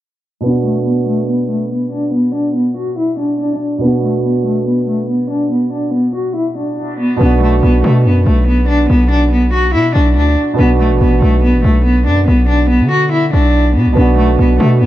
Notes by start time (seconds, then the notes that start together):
0.41 B2 B3
0.46 D4 F#4
0.66 A3
0.87 B3
1.08 A3
1.29 B3
1.50 A3
1.71 B3
1.93 D4
2.14 B3
2.35 D4
2.56 B3
2.77 F#4
2.98 E4
3.19 D4
3.40 D4
3.79 B2 B3
3.83 B3 D4
3.87 F#4
4.04 A3
4.25 B3
4.46 A3
4.67 B3
4.88 A3
5.09 B3
5.30 D4
5.52 B3
5.73 D4
5.94 B3
6.15 F#4
6.36 E4
6.57 D4
7.00 B3
7.17 B2 B3
7.21 B1 B3 D4 F#4
7.42 A3
7.63 B1 B3
7.84 B2 A3
8.05 F#2 B3
8.26 B1 A3
8.47 B3
8.69 D4
8.90 B1 B3
9.11 D4
9.32 B3
9.53 F#4
9.74 B2 E4
9.95 B1 D4
10.16 D2 D4
10.54 B2 B3
10.59 B1 B3 D4 F#4
10.80 A3
10.90 A1
11.01 A1 B3
11.22 B1 A3
11.43 B3
11.54 A1
11.64 B1 A3
11.86 B3
12.07 F#2 D4
12.28 B1 B3
12.49 D4
12.70 B3
12.81 D3
12.91 F#4
13.12 E4
13.33 B1 D4
13.76 B2 B3
13.86 B1
13.93 B2 B3
13.97 B1 B3 D4 F#4
14.18 A3
14.39 B1 B3
14.60 B2 A3
14.81 F#2 B3